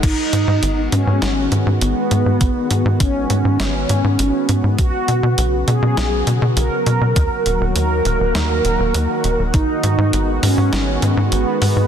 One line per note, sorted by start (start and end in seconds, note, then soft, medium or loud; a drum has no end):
0.03 0.16 G#1 loud
0.03 4.74 D#3 medium
0.03 4.74 G#3 medium
0.03 7.12 B3 medium
0.03 0.80 D#4 loud
0.03 4.74 F#4 medium
0.03 kick loud
0.03 closed hi-hat medium
0.03 crash medium
0.33 0.46 G#2 loud
0.33 closed hi-hat medium
0.48 0.61 G#2 loud
0.63 0.89 G#1 loud
0.63 closed hi-hat medium
0.92 1.05 G#2 loud
0.92 1.70 C#4 loud
0.92 closed hi-hat medium
1.07 1.20 G#2 medium
1.22 1.48 G#1 loud
1.22 snare loud
1.22 closed hi-hat medium
1.52 1.65 G#2 medium
1.52 closed hi-hat medium
1.67 1.80 G#2 loud
1.81 1.94 G#1 loud
1.81 2.88 B3 loud
1.81 closed hi-hat loud
2.11 2.24 G#2 medium
2.11 closed hi-hat medium
2.26 2.39 G#2 medium
2.41 2.54 G#1 loud
2.41 kick loud
2.41 closed hi-hat medium
2.71 2.84 G#2 loud
2.71 closed hi-hat medium
2.85 2.98 G#2 loud
3.00 3.26 G#1 loud
3.00 4.67 C#4 loud
3.00 kick loud
3.00 closed hi-hat loud
3.30 3.43 G#2 loud
3.30 closed hi-hat medium
3.45 3.58 G#2 medium
3.60 3.86 G#1 medium
3.60 snare loud
3.60 closed hi-hat medium
3.89 4.02 G#2 medium
3.89 closed hi-hat medium
4.04 4.17 G#2 loud
4.19 4.32 G#1 loud
4.19 closed hi-hat medium
4.49 4.62 G#2 medium
4.49 closed hi-hat medium
4.64 4.77 G#2 medium
4.78 4.92 B1 loud
4.78 7.14 C#3 medium
4.78 9.50 F#3 medium
4.78 11.87 F#4 medium
4.78 5.56 F#4 loud
4.78 kick loud
4.78 closed hi-hat medium
5.08 5.21 B2 loud
5.08 closed hi-hat medium
5.23 5.36 B2 loud
5.38 5.64 B1 loud
5.38 closed hi-hat loud
5.68 5.81 B2 loud
5.68 6.45 G#4 loud
5.68 closed hi-hat medium
5.82 5.95 B2 medium
5.97 6.23 B1 loud
5.97 snare loud
5.97 closed hi-hat medium
6.27 6.40 B2 medium
6.27 closed hi-hat medium
6.42 6.55 B2 loud
6.57 6.70 B1 loud
6.57 7.64 A#4 loud
6.57 closed hi-hat medium
6.86 6.99 B2 medium
6.86 closed hi-hat medium
7.01 7.14 B2 medium
7.16 7.29 D#2 loud
7.16 11.87 D#3 medium
7.16 9.51 A#3 medium
7.16 kick loud
7.16 closed hi-hat medium
7.46 7.59 D#1 loud
7.46 closed hi-hat medium
7.61 7.74 D#1 loud
7.75 8.02 D#2 loud
7.75 9.42 A#4 loud
7.75 closed hi-hat medium
8.05 8.18 D#1 loud
8.05 closed hi-hat medium
8.20 8.33 D#1 medium
8.35 8.61 D#2 loud
8.35 snare loud
8.35 closed hi-hat medium
8.65 8.78 D#1 medium
8.65 closed hi-hat medium
8.79 8.92 D#1 medium
8.94 9.07 D#2 loud
8.94 closed hi-hat medium
9.24 9.37 D#1 medium
9.24 closed hi-hat medium
9.39 9.52 D#1 medium
9.54 9.67 G#1 loud
9.54 11.87 G#3 medium
9.54 11.87 B3 medium
9.54 10.31 D#4 loud
9.54 kick loud
9.54 closed hi-hat medium
9.83 9.96 G#2 loud
9.83 closed hi-hat medium
9.98 10.11 G#2 loud
10.13 10.39 G#1 medium
10.13 closed hi-hat medium
10.43 10.56 G#2 medium
10.43 11.20 C#4 loud
10.43 open hi-hat medium
10.58 10.71 G#2 medium
10.73 10.99 G#1 loud
10.73 snare loud
10.73 closed hi-hat medium
11.02 11.15 G#2 loud
11.02 closed hi-hat medium
11.17 11.30 G#2 loud
11.32 11.45 G#1 loud
11.32 11.87 B3 loud
11.32 closed hi-hat medium
11.62 11.75 G#2 loud
11.62 open hi-hat medium
11.76 11.87 G#2 medium